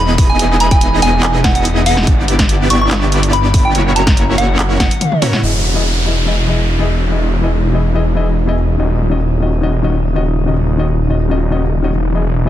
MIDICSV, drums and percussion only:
0, 0, Header, 1, 2, 480
1, 0, Start_track
1, 0, Tempo, 419580
1, 451, Time_signature, 4, 2, 24, 8
1, 14292, End_track
2, 0, Start_track
2, 0, Title_t, "Drums"
2, 209, Note_on_c, 9, 46, 93
2, 210, Note_on_c, 9, 36, 111
2, 324, Note_off_c, 9, 46, 0
2, 325, Note_off_c, 9, 36, 0
2, 450, Note_on_c, 9, 42, 81
2, 565, Note_off_c, 9, 42, 0
2, 689, Note_on_c, 9, 42, 67
2, 804, Note_off_c, 9, 42, 0
2, 815, Note_on_c, 9, 42, 68
2, 816, Note_on_c, 9, 36, 101
2, 930, Note_off_c, 9, 36, 0
2, 930, Note_off_c, 9, 42, 0
2, 930, Note_on_c, 9, 42, 78
2, 1044, Note_off_c, 9, 42, 0
2, 1170, Note_on_c, 9, 42, 68
2, 1284, Note_off_c, 9, 42, 0
2, 1409, Note_on_c, 9, 39, 116
2, 1409, Note_on_c, 9, 42, 81
2, 1524, Note_off_c, 9, 39, 0
2, 1524, Note_off_c, 9, 42, 0
2, 1650, Note_on_c, 9, 38, 67
2, 1650, Note_on_c, 9, 42, 69
2, 1651, Note_on_c, 9, 36, 61
2, 1765, Note_off_c, 9, 36, 0
2, 1765, Note_off_c, 9, 38, 0
2, 1765, Note_off_c, 9, 42, 0
2, 1775, Note_on_c, 9, 42, 64
2, 1889, Note_off_c, 9, 42, 0
2, 1889, Note_on_c, 9, 42, 81
2, 2003, Note_off_c, 9, 42, 0
2, 2130, Note_on_c, 9, 46, 100
2, 2244, Note_off_c, 9, 46, 0
2, 2254, Note_on_c, 9, 38, 66
2, 2368, Note_off_c, 9, 38, 0
2, 2369, Note_on_c, 9, 42, 84
2, 2370, Note_on_c, 9, 36, 115
2, 2484, Note_off_c, 9, 36, 0
2, 2484, Note_off_c, 9, 42, 0
2, 2611, Note_on_c, 9, 42, 69
2, 2725, Note_off_c, 9, 42, 0
2, 2734, Note_on_c, 9, 38, 66
2, 2734, Note_on_c, 9, 42, 71
2, 2735, Note_on_c, 9, 36, 59
2, 2849, Note_off_c, 9, 36, 0
2, 2849, Note_off_c, 9, 38, 0
2, 2849, Note_off_c, 9, 42, 0
2, 2850, Note_on_c, 9, 42, 83
2, 2964, Note_off_c, 9, 42, 0
2, 3091, Note_on_c, 9, 42, 72
2, 3206, Note_off_c, 9, 42, 0
2, 3331, Note_on_c, 9, 38, 81
2, 3331, Note_on_c, 9, 39, 116
2, 3331, Note_on_c, 9, 42, 84
2, 3445, Note_off_c, 9, 38, 0
2, 3445, Note_off_c, 9, 39, 0
2, 3445, Note_off_c, 9, 42, 0
2, 3571, Note_on_c, 9, 42, 70
2, 3685, Note_off_c, 9, 42, 0
2, 3696, Note_on_c, 9, 42, 68
2, 3810, Note_off_c, 9, 42, 0
2, 3812, Note_on_c, 9, 42, 82
2, 3926, Note_off_c, 9, 42, 0
2, 4049, Note_on_c, 9, 46, 101
2, 4050, Note_on_c, 9, 36, 103
2, 4163, Note_off_c, 9, 46, 0
2, 4165, Note_off_c, 9, 36, 0
2, 4289, Note_on_c, 9, 42, 83
2, 4403, Note_off_c, 9, 42, 0
2, 4531, Note_on_c, 9, 42, 72
2, 4645, Note_off_c, 9, 42, 0
2, 4656, Note_on_c, 9, 36, 103
2, 4656, Note_on_c, 9, 38, 64
2, 4656, Note_on_c, 9, 42, 74
2, 4770, Note_off_c, 9, 36, 0
2, 4771, Note_off_c, 9, 38, 0
2, 4771, Note_off_c, 9, 42, 0
2, 4772, Note_on_c, 9, 42, 84
2, 4887, Note_off_c, 9, 42, 0
2, 5012, Note_on_c, 9, 42, 71
2, 5127, Note_off_c, 9, 42, 0
2, 5253, Note_on_c, 9, 39, 120
2, 5253, Note_on_c, 9, 42, 86
2, 5367, Note_off_c, 9, 39, 0
2, 5367, Note_off_c, 9, 42, 0
2, 5490, Note_on_c, 9, 36, 59
2, 5493, Note_on_c, 9, 38, 63
2, 5493, Note_on_c, 9, 42, 72
2, 5493, Note_on_c, 9, 48, 66
2, 5604, Note_off_c, 9, 36, 0
2, 5607, Note_off_c, 9, 38, 0
2, 5607, Note_off_c, 9, 42, 0
2, 5607, Note_off_c, 9, 48, 0
2, 5619, Note_on_c, 9, 42, 70
2, 5733, Note_off_c, 9, 42, 0
2, 5733, Note_on_c, 9, 42, 83
2, 5733, Note_on_c, 9, 47, 79
2, 5847, Note_off_c, 9, 42, 0
2, 5847, Note_off_c, 9, 47, 0
2, 5857, Note_on_c, 9, 47, 75
2, 5972, Note_off_c, 9, 47, 0
2, 5973, Note_on_c, 9, 45, 99
2, 5973, Note_on_c, 9, 46, 97
2, 6088, Note_off_c, 9, 45, 0
2, 6088, Note_off_c, 9, 46, 0
2, 6099, Note_on_c, 9, 38, 63
2, 6099, Note_on_c, 9, 45, 93
2, 6214, Note_off_c, 9, 38, 0
2, 6214, Note_off_c, 9, 45, 0
2, 14292, End_track
0, 0, End_of_file